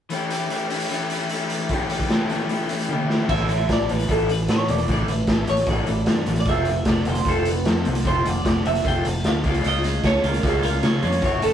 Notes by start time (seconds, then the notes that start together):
0.10 E3 A3 C#4 G4, closed hi-hat
0.30 A3 C#4 G4, closed hi-hat
0.49 E3 A3 C#4 G4, closed hi-hat
0.70 A3 C#4 G4, closed hi-hat
0.80 closed hi-hat
0.90 E3 A3 C#4 G4, closed hi-hat
1.10 A3 C#4 G4, closed hi-hat
1.29 E3 A3 C#4, closed hi-hat
1.33 G4
1.50 closed hi-hat
1.69 E3 A3 C#4 G4, kick, closed hi-hat
1.89 A3 C#4 G4, closed hi-hat
2.00 kick, closed hi-hat
2.10 E3 A3 C#4 G4, snare, closed hi-hat
2.29 A3 C#4 G4, closed hi-hat
2.49 E3 A3 C#4 G4, closed hi-hat
2.69 A3 C#4 G4, closed hi-hat
2.79 closed hi-hat
2.89 E3 A3 C#4 G4, high tom
3.10 snare
3.29 A1 E3 A3 C#4 E5, kick, crash
3.49 E3 A3, closed hi-hat
3.69 A1 E3 A3 D5, kick, snare, closed hi-hat
3.89 A1 E3 A3 B4, closed hi-hat
3.99 closed hi-hat
4.09 A1 E3 A3 C#4 A4, kick, closed hi-hat
4.29 E3 A3 B4, closed hi-hat
4.48 A2 E3 A3 C#5, snare, closed hi-hat
4.68 E1 E3 A3 D5, closed hi-hat
4.78 closed hi-hat
4.88 A1 E3 A3 C#4 D5, kick, closed hi-hat
5.08 A1 E3 A3 B4, closed hi-hat
5.27 A1 E3 A3, kick, snare, closed hi-hat
5.47 A1 E3 A3 C#5, closed hi-hat
5.57 closed hi-hat
5.66 A1 E3 A3 C#4 D5, kick, closed hi-hat
5.86 A1 E3 A3, closed hi-hat
6.06 G2 E3 A3, snare, closed hi-hat
6.26 A1 E3 A3, closed hi-hat
6.36 closed hi-hat
6.40 D5
6.45 F1 A3 C4 F4 E5, kick, closed hi-hat
6.65 A3 C4, closed hi-hat
6.85 F1 A3 C4 D5, kick, snare, closed hi-hat
6.96 snare
7.05 F1 A3 C4 C5, closed hi-hat
7.15 closed hi-hat
7.25 F1 A3 C4 F4 A4, kick, closed hi-hat
7.45 A3 C4 B4, closed hi-hat
7.65 F2 A3 C4 C5, snare, closed hi-hat
7.85 C2 A3 C4, closed hi-hat
7.95 closed hi-hat
8.05 F1 A3 C4 F4 C5, kick, closed hi-hat
8.25 F1 A3 C4 D5, closed hi-hat
8.45 F1 A3 C4, kick, snare, closed hi-hat
8.65 F1 A3 C4 E5, closed hi-hat
8.75 closed hi-hat
8.84 F1 A3 C4 F4 G5, kick, closed hi-hat
9.05 F1 A3 C4 F5, closed hi-hat
9.24 D2 A3 C4 F5, snare, closed hi-hat
9.44 C#2 G#3 C#4 F4, kick, closed hi-hat
9.54 closed hi-hat
9.64 C#2 C#3 G#3 C#4 F4 D#5, closed hi-hat
9.84 G#3 C#4, closed hi-hat
10.03 C#2 G#3 C#4 C#5, kick, snare, closed hi-hat
10.15 snare
10.24 C#2 G#3 C#4 F4 A#4, closed hi-hat
10.34 closed hi-hat
10.43 C#2 G#3 C#4 F4 G#4, kick, closed hi-hat
10.63 G#3 C#4 F4 A#4, closed hi-hat
10.83 C#3 G#3 C#4 C5, snare, closed hi-hat
11.02 F2 G#3 C#4 C#5, closed hi-hat
11.12 closed hi-hat
11.22 F#1 F#2 A3 C#4 F#4 C#5, kick, closed hi-hat
11.42 F#1 A3 C#4 A4, closed hi-hat